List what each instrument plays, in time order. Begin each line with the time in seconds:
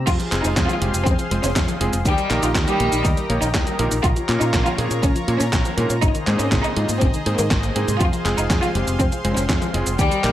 0.07 fingered electric bass F2, synth arpeggio sound C3, violin section F4, analog synth pad G#4 C5 F5 C6, kick, closed hi-hat, crash, cabasa
0.19 synth arpeggio sound F3, closed hi-hat, cabasa
0.32 fingered electric bass F1, electric grand piano G#3 C4 F4 G#4, synth arpeggio sound G#3, clap, closed hi-hat
0.44 fingered electric bass F1, synth arpeggio sound C4, violin section D#4, closed hi-hat, cabasa
0.57 fingered electric bass F2, synth arpeggio sound C3, kick, snare, clap, closed hi-hat, cabasa
0.69 synth arpeggio sound F3, violin section F4, closed hi-hat, cabasa
0.82 fingered electric bass F1, synth arpeggio sound G#3, electric grand piano G#3 C4 F4 G4, closed hi-hat
0.94 fingered electric bass F1, synth arpeggio sound C4, closed hi-hat, cabasa
1.06 fingered electric bass F2, synth arpeggio sound C3, violin section C4, kick, closed hi-hat, cabasa
1.19 synth arpeggio sound F3, closed hi-hat, cabasa
1.31 fingered electric bass F1, electric grand piano G#3 C4 F4 C5, synth arpeggio sound G#3, closed hi-hat
1.43 fingered electric bass F1, synth arpeggio sound C4, violin section C#4, snare, closed hi-hat, cabasa
1.56 fingered electric bass F2, synth arpeggio sound C3, kick, snare, clap, closed hi-hat, cabasa
1.68 synth arpeggio sound F3, closed hi-hat, cabasa
1.81 fingered electric bass F1, synth arpeggio sound G#3, electric grand piano G#3 C4 F4 G#4, closed hi-hat
1.93 fingered electric bass F1, synth arpeggio sound C4, closed hi-hat, cabasa
2.05 fingered electric bass D#2, synth arpeggio sound D#3, violin section G3 G4, analog synth pad G4 A#4 D#5 A#5, kick, closed hi-hat, cabasa
2.18 synth arpeggio sound G3, closed hi-hat, cabasa
2.30 fingered electric bass A#1, electric grand piano D#3 A#3 D#4 G4 A#4, synth arpeggio sound A#3, clap, closed hi-hat
2.43 fingered electric bass A#1, synth arpeggio sound D#4, violin section F4, closed hi-hat, cabasa
2.55 fingered electric bass D#2, synth arpeggio sound D#3, kick, snare, clap, closed hi-hat, cabasa
2.67 violin section G3 G4, synth arpeggio sound G3, closed hi-hat, cabasa
2.80 fingered electric bass A#1, electric grand piano D#3 A#3 D#4 G4 A#4, synth arpeggio sound A#3, closed hi-hat
2.92 fingered electric bass A#1, synth arpeggio sound D#4, closed hi-hat, cabasa
3.05 fingered electric bass D#2, synth arpeggio sound D#3, violin section D#4, kick, closed hi-hat, cabasa
3.17 synth arpeggio sound G3, closed hi-hat, cabasa
3.29 fingered electric bass A#1, electric grand piano D#3 A#3 D#4 G4 C#5, synth arpeggio sound A#3, closed hi-hat
3.42 fingered electric bass A#1, synth arpeggio sound D#4, violin section D#4, closed hi-hat, cabasa
3.54 fingered electric bass D#2, synth arpeggio sound D#3, kick, snare, clap, closed hi-hat, cabasa
3.67 synth arpeggio sound G3, closed hi-hat, cabasa
3.79 fingered electric bass A#1, electric grand piano A#2 A#3 D#4 G4 A#4, synth arpeggio sound A#3, closed hi-hat
3.91 fingered electric bass A#1, synth arpeggio sound D#4, closed hi-hat, cabasa
4.04 fingered electric bass A#1, synth arpeggio sound C#3, analog synth pad F4 C#5 A#5, violin section F4, kick, closed hi-hat, cabasa
4.16 synth arpeggio sound F3, closed hi-hat, cabasa
4.29 electric grand piano A#2 A#3 C#4 F4 A#4, fingered electric bass A#2, synth arpeggio sound A#3, clap, closed hi-hat
4.41 fingered electric bass A#2, synth arpeggio sound C#4, violin section D#4, closed hi-hat, cabasa
4.53 fingered electric bass A#1, synth arpeggio sound C#3, kick, snare, clap, closed hi-hat, cabasa
4.66 synth arpeggio sound F3, violin section F4, closed hi-hat, cabasa
4.78 fingered electric bass A#2, electric grand piano A#2 A#3 C#4 F4 G#4, synth arpeggio sound A#3, closed hi-hat
4.91 fingered electric bass A#2, synth arpeggio sound C#4, closed hi-hat, cabasa
5.03 fingered electric bass A#1, synth arpeggio sound C#3, violin section C#4, kick, closed hi-hat, cabasa
5.16 synth arpeggio sound F3, closed hi-hat, cabasa
5.28 electric grand piano A#2 A#3 C#4 F4 C#5, fingered electric bass A#2, synth arpeggio sound A#3, closed hi-hat
5.40 fingered electric bass A#2, violin section C#4, synth arpeggio sound C#4, snare, closed hi-hat, cabasa
5.53 fingered electric bass A#1, synth arpeggio sound C#3, kick, snare, clap, closed hi-hat, cabasa
5.65 synth arpeggio sound F3, closed hi-hat, cabasa
5.77 electric grand piano G#2 A#3 C#4 F4 A#4, fingered electric bass A#2, synth arpeggio sound A#3, closed hi-hat
5.90 fingered electric bass A#2, synth arpeggio sound C#4, closed hi-hat, cabasa
6.02 fingered electric bass G#1, synth arpeggio sound C3, violin section D#4, analog synth pad G#4 C5 D#5, kick, closed hi-hat, cabasa
6.15 synth arpeggio sound D#3, closed hi-hat, cabasa
6.27 fingered electric bass G#2, electric grand piano G#2 A#3 C4 D#4 G#4, synth arpeggio sound G#3, clap, closed hi-hat
6.39 fingered electric bass G#2, synth arpeggio sound A#3, violin section C#4, closed hi-hat, cabasa
6.52 fingered electric bass G#1, synth arpeggio sound C3, kick, snare, clap, closed hi-hat, cabasa
6.64 synth arpeggio sound D#3, violin section D#4, closed hi-hat, cabasa
6.77 fingered electric bass G#2, electric grand piano G#2 A#3 C4 D#4 F4, synth arpeggio sound G#3, closed hi-hat
6.89 fingered electric bass G#2, synth arpeggio sound A#3, closed hi-hat, cabasa
7.01 fingered electric bass G#1, synth arpeggio sound C3, violin section C4, kick, closed hi-hat, cabasa
7.14 synth arpeggio sound D#3, closed hi-hat, cabasa
7.26 electric grand piano G#2 A#3 C4 D#4 C5, fingered electric bass G#2, synth arpeggio sound G#4, closed hi-hat
7.38 fingered electric bass G#2, synth arpeggio sound D#3, violin section A#3, closed hi-hat, cabasa
7.51 fingered electric bass G#1, synth arpeggio sound G#3, kick, snare, clap, closed hi-hat, cabasa
7.63 synth arpeggio sound A#3, closed hi-hat, cabasa
7.76 fingered electric bass G#2, electric grand piano A#3 C4 D#4 G#4, synth arpeggio sound C4, closed hi-hat
7.88 fingered electric bass G#2, synth arpeggio sound C3, closed hi-hat, cabasa
8.00 fingered electric bass F2, synth arpeggio sound C3, violin section F4, analog synth pad F5 C6, kick, closed hi-hat, cabasa
8.13 synth arpeggio sound F3, closed hi-hat, cabasa
8.25 fingered electric bass F1, electric grand piano G#3 C4 F4 G#4, synth arpeggio sound G#3, clap, closed hi-hat
8.38 fingered electric bass F1, synth arpeggio sound C4, violin section D#4, closed hi-hat, cabasa
8.50 fingered electric bass F2, synth arpeggio sound C3, kick, snare, clap, closed hi-hat, cabasa
8.62 synth arpeggio sound F3, violin section F4, closed hi-hat, cabasa
8.75 fingered electric bass F1, electric grand piano G#3 C4 F4 G4, synth arpeggio sound G#3, closed hi-hat
8.87 fingered electric bass F1, synth arpeggio sound C4, closed hi-hat, cabasa
9.00 fingered electric bass F2, synth arpeggio sound C3, violin section C4, kick, closed hi-hat, cabasa
9.12 synth arpeggio sound F3, closed hi-hat, cabasa
9.24 fingered electric bass F1, synth arpeggio sound G#3, electric grand piano G#3 C4 F4 C5, closed hi-hat
9.37 fingered electric bass F1, synth arpeggio sound C4, violin section C#4, snare, closed hi-hat, cabasa
9.49 fingered electric bass F2, synth arpeggio sound C3, kick, snare, clap, closed hi-hat, cabasa
9.62 synth arpeggio sound F3, closed hi-hat, cabasa
9.74 fingered electric bass F1, electric grand piano G#3 C4 F4 G#4, synth arpeggio sound G#3, closed hi-hat
9.87 fingered electric bass F1, synth arpeggio sound C4, closed hi-hat, cabasa
9.99 fingered electric bass D#2, synth arpeggio sound D#3, violin section G3 G4, analog synth pad G4 A#4 D#5 A#5, kick, closed hi-hat, cabasa
10.11 synth arpeggio sound G3, closed hi-hat, cabasa
10.23 fingered electric bass A#1, electric grand piano D#3 A#3 D#4 G4 A#4, synth arpeggio sound A#3, clap, closed hi-hat